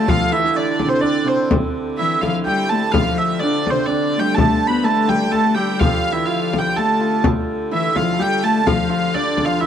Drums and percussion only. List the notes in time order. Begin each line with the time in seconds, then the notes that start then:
0.08 frame drum
0.79 frame drum
1.03 frame drum
1.51 frame drum
2.23 frame drum
2.46 frame drum
2.94 frame drum
3.19 frame drum
3.67 frame drum
3.91 frame drum
4.38 frame drum
5.09 frame drum
5.34 frame drum
5.81 frame drum
6.53 frame drum
6.76 frame drum
7.24 frame drum
7.96 frame drum
8.20 frame drum
8.67 frame drum
9.14 frame drum
9.38 frame drum
9.62 frame drum